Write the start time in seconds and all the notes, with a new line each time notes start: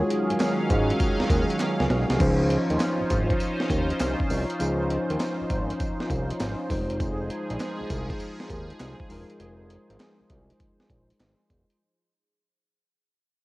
Already playing: D#3 F#3 G#3 C#4 F4 F#4 G#4 C#5 F5
0.10 closed hi-hat
0.30 G#2, closed hi-hat
0.40 snare, clap, closed hi-hat, tambourine
0.70 G#2, kick, closed hi-hat, tambourine
0.90 closed hi-hat
1.00 kick, closed hi-hat, tambourine
1.20 D#2, snare
1.30 D#2, kick, closed hi-hat, tambourine
1.50 closed hi-hat
1.60 snare, clap, closed hi-hat
1.80 C#2, snare
1.90 B1, snare, closed hi-hat
2.10 C2, snare, closed hi-hat
2.19 C#2 F3 C#4 D#4 F4 C5, kick, closed hi-hat, crash, tambourine
2.50 closed hi-hat
2.70 D#2, closed hi-hat
2.80 snare, clap, closed hi-hat, tambourine
3.00 G#1
3.10 G#1, kick, closed hi-hat, tambourine
3.30 kick, closed hi-hat
3.40 closed hi-hat, tambourine
3.60 snare
3.70 D#2, kick, closed hi-hat, tambourine
3.90 closed hi-hat
4.00 C2, snare, clap, closed hi-hat, tambourine
4.20 kick
4.30 C2, open hi-hat, tambourine
4.50 closed hi-hat
4.59 C#2 F3 C#4 D#4 C5, closed hi-hat, tambourine
4.90 closed hi-hat
5.10 D#2, closed hi-hat
5.20 snare, clap, closed hi-hat, tambourine
5.41 G#1
5.50 G#1, kick, closed hi-hat, tambourine
5.70 closed hi-hat
5.80 kick, closed hi-hat, tambourine
6.00 snare
6.10 C2, kick, closed hi-hat, tambourine
6.30 closed hi-hat
6.40 G#1, snare, clap, closed hi-hat, tambourine
6.69 F1 F3 G3 D#4 F4 G#4 C5, kick, open hi-hat, tambourine
6.76 G#3
6.90 closed hi-hat
7.00 kick, closed hi-hat, tambourine
7.30 closed hi-hat
7.50 A#1, closed hi-hat
7.60 snare, clap, closed hi-hat, tambourine
7.80 C2
7.90 C2, kick, closed hi-hat, tambourine
8.10 kick, closed hi-hat
8.20 closed hi-hat, tambourine
8.40 snare
8.50 D#2, kick, closed hi-hat, tambourine
8.70 closed hi-hat
8.80 C2, snare, clap, closed hi-hat, tambourine
9.00 kick
9.09 E1 G#3 D#4 F4 A#4, open hi-hat, tambourine
9.30 closed hi-hat
9.40 F1, closed hi-hat
9.70 closed hi-hat
9.90 G#1, closed hi-hat
10.00 snare, clap, closed hi-hat
10.20 C2
10.30 C2, kick, closed hi-hat
10.50 closed hi-hat
10.60 kick, closed hi-hat
10.80 snare
10.90 A#1, kick, closed hi-hat
11.10 closed hi-hat
11.20 G#1, snare, clap, closed hi-hat
11.50 E1, kick, closed hi-hat
11.70 closed hi-hat